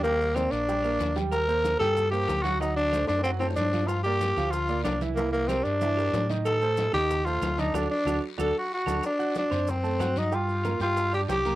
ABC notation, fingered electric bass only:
X:1
M:4/4
L:1/8
Q:1/4=187
K:Dphr
V:1 name="Fingered electric bass" clef=bass
E,,3 B,,,3 E,,2- | E,,3 G,,3 D,,2- | D,,3 ^F,,3 G,,2- | G,,3 D,,3 C,,2- |
C,,3 G,,3 A,,2- | A,,3 E,,3 D,,2 | D,, z D,, z D,, z2 D,, | z3 ^F,,3 G,,2- |
G,,3 G,,3 C,,2 |]